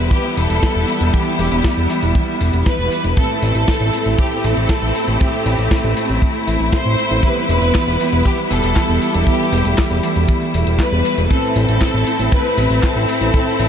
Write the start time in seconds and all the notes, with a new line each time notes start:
Already playing: E3 G3 B3 E4 G4 E5
0.11 G4, kick, closed hi-hat, cabasa
0.25 closed hi-hat, cabasa
0.37 E1 A4, open hi-hat, cabasa
0.50 E1, closed hi-hat, cabasa
0.63 kick, snare, closed hi-hat, cabasa
0.75 E1, closed hi-hat, cabasa
0.88 open hi-hat, cabasa
1.01 E1, closed hi-hat, cabasa
1.13 E3 B3 E4 G4 E5, kick, closed hi-hat, cabasa
1.26 closed hi-hat
1.39 E1, open hi-hat, cabasa
1.52 E1, closed hi-hat, cabasa
1.64 kick, snare, closed hi-hat, cabasa
1.77 E1, closed hi-hat
1.90 E3 B3 E4 G4 E5, open hi-hat, cabasa
2.03 E1, closed hi-hat, cabasa
2.15 kick, closed hi-hat, cabasa
2.28 closed hi-hat, cabasa
2.41 E1, open hi-hat, cabasa
2.53 E1, closed hi-hat, cabasa
2.66 B4, kick, snare, closed hi-hat, cabasa
2.79 E1, closed hi-hat, cabasa
2.92 open hi-hat, cabasa
3.04 E1, closed hi-hat, cabasa
3.17 A2 A3 C4 E4 A4 E5, kick, closed hi-hat, cabasa
3.30 closed hi-hat
3.42 A1 A4, open hi-hat, cabasa
3.55 A1, closed hi-hat, cabasa
3.68 kick, snare, closed hi-hat, cabasa
3.81 A1, closed hi-hat
3.93 A2 C4 E4 A4 E5, open hi-hat, cabasa
4.06 A1, closed hi-hat, cabasa
4.19 G4, kick, closed hi-hat, cabasa
4.32 closed hi-hat, cabasa
4.44 A1 A4, open hi-hat, cabasa
4.57 A1, closed hi-hat, cabasa
4.69 kick, snare, closed hi-hat, cabasa
4.82 A1, closed hi-hat, cabasa
4.95 open hi-hat, cabasa
5.08 A1, closed hi-hat, cabasa
5.20 A2 C4 E4 G4 A4 E5, kick, closed hi-hat, cabasa
5.33 closed hi-hat, cabasa
5.46 A1, open hi-hat, cabasa
5.59 A1, closed hi-hat, cabasa
5.71 kick, snare, closed hi-hat, cabasa
5.84 A1, closed hi-hat, cabasa
5.97 A2 C4 E4 A4 E5, open hi-hat, cabasa
6.09 A1, closed hi-hat, cabasa
6.22 kick, closed hi-hat, cabasa
6.35 closed hi-hat, cabasa
6.48 A1, open hi-hat, cabasa
6.60 A1, closed hi-hat, cabasa
6.73 C5, kick, snare, closed hi-hat, cabasa
6.86 A1, closed hi-hat, cabasa
6.98 open hi-hat, cabasa
7.11 A1, closed hi-hat, cabasa
7.23 E3 G3 B3 E4 G4 B4 E5, kick, closed hi-hat, cabasa
7.37 closed hi-hat
7.49 E1 B4, open hi-hat, cabasa
7.62 E1, closed hi-hat, cabasa
7.75 kick, snare, clap, closed hi-hat, cabasa
7.87 E1, closed hi-hat
8.00 E3 B3 E4 G4 E5, open hi-hat, cabasa
8.13 E1, closed hi-hat, cabasa
8.25 G4, kick, closed hi-hat, cabasa
8.38 closed hi-hat, cabasa
8.51 E1 A4, open hi-hat, cabasa
8.64 E1, closed hi-hat, cabasa
8.76 kick, snare, clap, closed hi-hat, cabasa
8.89 E1, closed hi-hat, cabasa
9.02 open hi-hat, cabasa
9.14 E1, closed hi-hat, cabasa
9.27 E3 A3 B3 E4 G4 E5, kick, closed hi-hat, cabasa
9.40 closed hi-hat
9.53 E1, open hi-hat, cabasa
9.65 E1, closed hi-hat, cabasa
9.78 kick, snare, clap, closed hi-hat, cabasa
9.91 E1, closed hi-hat
10.03 E3 B3 E4 G4 E5, open hi-hat, cabasa
10.16 E1, closed hi-hat, cabasa
10.29 kick, closed hi-hat, cabasa
10.42 closed hi-hat, cabasa
10.54 E1, open hi-hat, cabasa
10.67 E1, closed hi-hat, cabasa
10.79 B4, kick, snare, clap, closed hi-hat, cabasa
10.92 E1, closed hi-hat, cabasa
11.05 open hi-hat, cabasa
11.18 E1, closed hi-hat, cabasa
11.31 A2 C4 E4 A4 E5, kick, closed hi-hat, cabasa
11.43 closed hi-hat
11.56 A1 A4, open hi-hat, cabasa
11.69 A1, closed hi-hat, cabasa
11.81 kick, snare, clap, closed hi-hat, cabasa
11.94 A1, closed hi-hat
12.07 A2 C4 E4 A4 E5, open hi-hat, cabasa
12.19 A1, closed hi-hat, cabasa
12.32 B4, kick, closed hi-hat, cabasa
12.45 closed hi-hat, cabasa
12.58 A1, open hi-hat, cabasa
12.70 A1, closed hi-hat, cabasa
12.83 A4, kick, snare, clap, closed hi-hat, cabasa
12.96 A1, closed hi-hat, cabasa
13.09 A4, open hi-hat, cabasa
13.21 A1, closed hi-hat, cabasa
13.34 A2 C4 E4 A4 E5, kick, closed hi-hat, cabasa
13.47 closed hi-hat
13.59 A1, open hi-hat, cabasa